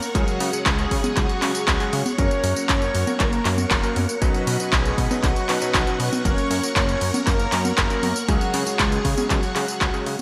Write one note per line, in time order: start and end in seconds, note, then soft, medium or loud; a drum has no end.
0.00 0.12 A#3 medium
0.00 0.13 A#4 medium
0.00 0.16 A#4 loud
0.00 0.13 C#5 medium
0.00 2.14 F#5 medium
0.00 10.22 C#6 medium
0.00 tambourine medium
0.15 0.25 C#2 medium
0.15 0.50 C#3 medium
0.15 0.50 F#3 medium
0.15 0.63 F#3 medium
0.15 0.50 G#3 medium
0.15 0.50 C#4 medium
0.15 0.67 F#4 loud
0.15 0.50 G#4 medium
0.15 2.16 G#4 medium
0.15 4.18 C#5 medium
0.15 kick loud
0.15 closed hi-hat medium
0.15 tambourine soft
0.28 closed hi-hat soft
0.28 tambourine soft
0.40 0.50 C#3 loud
0.40 open hi-hat loud
0.53 1.01 C#3 medium
0.53 1.01 F#3 medium
0.53 1.01 G#3 medium
0.53 1.01 C#4 medium
0.53 1.01 G#4 medium
0.53 closed hi-hat soft
0.53 tambourine medium
0.66 0.86 C#2 medium
0.66 1.13 G#3 medium
0.66 kick loud
0.66 clap loud
0.66 closed hi-hat loud
0.66 tambourine soft
0.79 closed hi-hat soft
0.79 tambourine soft
0.91 1.01 C#3 medium
0.91 kick medium
0.91 open hi-hat loud
1.04 1.24 C#3 medium
1.04 1.24 F#3 medium
1.04 1.24 G#3 medium
1.04 1.24 C#4 medium
1.04 1.24 G#4 medium
1.04 closed hi-hat soft
1.04 tambourine medium
1.04 high conga medium
1.17 1.27 C#2 loud
1.17 1.64 F#3 medium
1.17 1.67 F#4 loud
1.17 kick loud
1.17 clap medium
1.17 closed hi-hat loud
1.17 tambourine soft
1.29 closed hi-hat soft
1.29 tambourine soft
1.42 1.77 C#3 medium
1.42 1.52 C#3 medium
1.42 1.77 F#3 medium
1.42 1.77 G#3 medium
1.42 1.77 C#4 medium
1.42 1.77 G#4 medium
1.42 clap medium
1.42 open hi-hat loud
1.55 closed hi-hat soft
1.55 tambourine medium
1.68 1.77 C#2 medium
1.68 2.03 F#3 medium
1.68 2.03 F#4 loud
1.68 kick loud
1.68 clap loud
1.68 closed hi-hat medium
1.68 tambourine soft
1.80 2.00 C#3 medium
1.80 2.00 F#3 medium
1.80 2.00 G#3 medium
1.80 2.00 C#4 medium
1.80 2.00 G#4 loud
1.80 closed hi-hat soft
1.80 tambourine soft
1.93 2.03 C#3 medium
1.93 open hi-hat loud
2.06 closed hi-hat soft
2.06 tambourine medium
2.06 high conga medium
2.18 2.28 F#1 medium
2.18 2.53 F#3 medium
2.18 2.53 A#3 medium
2.18 2.53 C#4 medium
2.18 2.66 C#4 medium
2.18 2.53 A#4 loud
2.18 4.20 A#4 medium
2.18 2.66 C#5 loud
2.18 8.24 F#5 medium
2.18 kick loud
2.18 closed hi-hat medium
2.18 tambourine soft
2.31 closed hi-hat soft
2.31 tambourine soft
2.44 2.54 F#2 loud
2.44 open hi-hat loud
2.56 3.04 F#3 medium
2.56 3.04 A#3 medium
2.56 3.04 C#4 medium
2.56 3.04 A#4 medium
2.56 closed hi-hat soft
2.56 tambourine medium
2.69 2.89 F#1 loud
2.69 3.17 C#4 medium
2.69 3.22 C#5 loud
2.69 kick loud
2.69 clap loud
2.69 closed hi-hat medium
2.69 tambourine soft
2.82 closed hi-hat soft
2.82 tambourine soft
2.95 3.05 F#2 loud
2.95 open hi-hat loud
3.07 3.27 F#3 medium
3.07 3.27 A#3 medium
3.07 3.27 C#4 medium
3.07 3.27 A#4 medium
3.07 closed hi-hat soft
3.07 tambourine medium
3.07 high conga medium
3.20 3.40 F#1 medium
3.20 3.68 A#3 medium
3.20 3.67 A#4 loud
3.20 kick loud
3.20 clap medium
3.20 closed hi-hat medium
3.20 tambourine medium
3.33 closed hi-hat soft
3.33 tambourine soft
3.45 3.65 F#2 loud
3.45 3.80 F#3 medium
3.45 3.80 A#3 medium
3.45 3.80 C#4 medium
3.45 3.80 A#4 medium
3.45 clap medium
3.45 open hi-hat loud
3.58 closed hi-hat soft
3.58 tambourine medium
3.58 high conga medium
3.71 3.81 F#1 medium
3.71 4.18 A#3 medium
3.71 4.18 A#4 loud
3.71 kick loud
3.71 clap loud
3.71 closed hi-hat medium
3.71 tambourine soft
3.83 4.04 F#3 medium
3.83 4.04 A#3 medium
3.83 4.04 C#4 medium
3.83 4.04 A#4 medium
3.83 closed hi-hat soft
3.83 tambourine soft
3.96 4.06 F#2 medium
3.96 open hi-hat loud
3.96 high conga medium
4.09 tambourine medium
4.22 4.32 B1 medium
4.22 4.57 B2 medium
4.22 4.57 F#3 medium
4.22 4.69 F#3 medium
4.22 4.57 C#4 medium
4.22 4.57 D#4 medium
4.22 4.74 F#4 loud
4.22 4.57 B4 medium
4.22 6.23 B4 medium
4.22 6.23 D#5 medium
4.22 kick loud
4.22 closed hi-hat medium
4.22 tambourine medium
4.34 closed hi-hat soft
4.34 tambourine soft
4.47 4.57 B2 loud
4.47 open hi-hat loud
4.60 5.08 B2 medium
4.60 5.08 F#3 medium
4.60 5.08 C#4 medium
4.60 5.08 D#4 medium
4.60 5.08 B4 medium
4.60 closed hi-hat soft
4.60 tambourine medium
4.73 4.93 B1 loud
4.73 5.20 G#3 medium
4.73 5.25 G#4 medium
4.73 kick loud
4.73 clap loud
4.73 closed hi-hat medium
4.73 tambourine medium
4.85 closed hi-hat soft
4.85 tambourine soft
4.98 5.08 B2 medium
4.98 kick medium
4.98 open hi-hat loud
5.11 5.31 B2 medium
5.11 5.31 F#3 medium
5.11 5.31 C#4 medium
5.11 5.31 D#4 medium
5.11 5.31 B4 medium
5.11 closed hi-hat soft
5.11 tambourine medium
5.11 high conga medium
5.23 5.33 B1 medium
5.23 5.71 F#3 medium
5.23 5.71 F#4 loud
5.23 kick loud
5.23 clap medium
5.23 closed hi-hat medium
5.23 tambourine medium
5.36 closed hi-hat soft
5.36 tambourine soft
5.49 5.59 B2 medium
5.49 5.60 B2 medium
5.49 5.60 F#3 medium
5.49 5.60 C#4 medium
5.49 5.60 D#4 medium
5.49 5.60 B4 loud
5.49 clap medium
5.49 open hi-hat loud
5.61 5.84 B2 medium
5.61 5.84 F#3 medium
5.61 5.84 C#4 medium
5.61 5.84 D#4 medium
5.61 5.84 B4 loud
5.61 closed hi-hat soft
5.61 tambourine medium
5.74 5.84 B1 medium
5.74 6.10 F#3 medium
5.74 6.10 F#4 medium
5.74 kick loud
5.74 clap loud
5.74 closed hi-hat medium
5.74 tambourine soft
5.87 6.22 B2 medium
5.87 6.22 F#3 medium
5.87 6.22 C#4 medium
5.87 6.22 D#4 medium
5.87 6.22 B4 medium
5.87 closed hi-hat soft
5.87 tambourine soft
6.00 6.10 B2 medium
6.00 open hi-hat loud
6.13 closed hi-hat soft
6.13 tambourine medium
6.13 high conga medium
6.25 6.35 F#1 medium
6.25 6.60 F#3 medium
6.25 6.60 A#3 medium
6.25 6.60 C#4 medium
6.25 6.73 C#4 medium
6.25 6.60 A#4 loud
6.25 8.26 A#4 medium
6.25 8.26 C#5 medium
6.25 6.73 C#5 loud
6.25 kick loud
6.25 closed hi-hat medium
6.25 tambourine soft
6.38 closed hi-hat soft
6.38 tambourine soft
6.50 6.60 F#2 loud
6.50 open hi-hat loud
6.63 7.11 F#3 medium
6.63 7.11 A#3 medium
6.63 7.11 C#4 medium
6.63 7.11 A#4 medium
6.63 closed hi-hat soft
6.63 tambourine medium
6.76 6.96 F#1 loud
6.76 7.24 C#4 medium
6.76 7.23 C#5 loud
6.76 kick loud
6.76 clap loud
6.76 closed hi-hat medium
6.76 tambourine medium
6.89 closed hi-hat soft
6.89 tambourine soft
7.01 7.11 F#2 medium
7.01 open hi-hat loud
7.14 7.34 F#3 medium
7.14 7.34 A#3 medium
7.14 7.34 C#4 medium
7.14 7.34 A#4 medium
7.14 closed hi-hat soft
7.14 tambourine medium
7.14 high conga medium
7.27 7.47 F#1 medium
7.27 7.75 A#3 medium
7.27 7.77 A#4 loud
7.27 kick loud
7.27 clap medium
7.27 closed hi-hat loud
7.27 tambourine medium
7.40 closed hi-hat soft
7.40 tambourine soft
7.52 7.72 F#2 loud
7.52 7.87 F#3 medium
7.52 7.87 A#3 medium
7.52 7.87 C#4 medium
7.52 7.87 A#4 medium
7.52 clap medium
7.52 open hi-hat loud
7.65 closed hi-hat soft
7.65 tambourine medium
7.65 high conga medium
7.78 7.88 F#1 medium
7.78 8.26 A#3 medium
7.78 8.30 A#4 loud
7.78 kick loud
7.78 clap loud
7.78 closed hi-hat medium
7.78 tambourine medium
7.90 8.10 F#3 medium
7.90 8.10 A#3 medium
7.90 8.10 C#4 medium
7.90 8.10 A#4 medium
7.90 closed hi-hat soft
7.90 tambourine soft
8.03 8.13 F#2 medium
8.03 open hi-hat loud
8.03 high conga medium
8.16 tambourine medium
8.28 8.38 C#2 medium
8.28 8.64 C#3 medium
8.28 8.64 F#3 medium
8.28 8.76 F#3 medium
8.28 8.63 G#3 medium
8.28 8.64 C#4 medium
8.28 8.81 F#4 loud
8.28 8.64 G#4 loud
8.28 10.22 G#4 medium
8.28 10.22 C#5 medium
8.28 10.22 F#5 medium
8.28 kick loud
8.28 closed hi-hat medium
8.28 tambourine medium
8.41 closed hi-hat soft
8.41 tambourine soft
8.54 8.64 C#3 loud
8.54 open hi-hat loud
8.66 9.14 C#3 medium
8.66 9.14 F#3 medium
8.66 9.14 G#3 medium
8.66 9.14 C#4 medium
8.66 9.14 G#4 medium
8.66 closed hi-hat soft
8.66 tambourine medium
8.79 8.99 C#2 medium
8.79 9.27 G#3 medium
8.79 9.27 G#4 loud
8.79 kick loud
8.79 clap loud
8.79 closed hi-hat medium
8.79 tambourine medium
8.92 closed hi-hat soft
8.92 tambourine soft
9.05 9.15 C#3 medium
9.05 kick medium
9.05 open hi-hat loud
9.17 9.37 C#3 medium
9.17 9.37 F#3 medium
9.17 9.37 G#3 medium
9.17 9.37 C#4 medium
9.17 9.37 G#4 medium
9.17 closed hi-hat soft
9.17 tambourine medium
9.17 high conga medium
9.30 9.40 C#2 loud
9.30 9.78 F#3 medium
9.30 9.80 F#4 loud
9.30 kick loud
9.30 clap medium
9.30 closed hi-hat medium
9.30 tambourine medium
9.43 closed hi-hat soft
9.43 tambourine soft
9.55 9.91 C#3 medium
9.55 9.66 C#3 medium
9.55 9.91 F#3 medium
9.55 9.91 G#3 medium
9.55 9.91 C#4 medium
9.55 9.91 G#4 medium
9.55 clap medium
9.55 open hi-hat loud
9.68 closed hi-hat soft
9.68 tambourine medium
9.81 9.91 C#2 medium
9.81 10.17 F#3 medium
9.81 10.17 F#4 medium
9.81 kick loud
9.81 clap loud
9.81 closed hi-hat medium
9.81 tambourine soft
9.94 10.14 C#3 medium
9.94 10.14 F#3 medium
9.94 10.14 G#3 medium
9.94 10.14 C#4 medium
9.94 10.14 G#4 loud
9.94 closed hi-hat soft
9.94 tambourine soft
10.06 10.16 C#3 medium
10.06 open hi-hat loud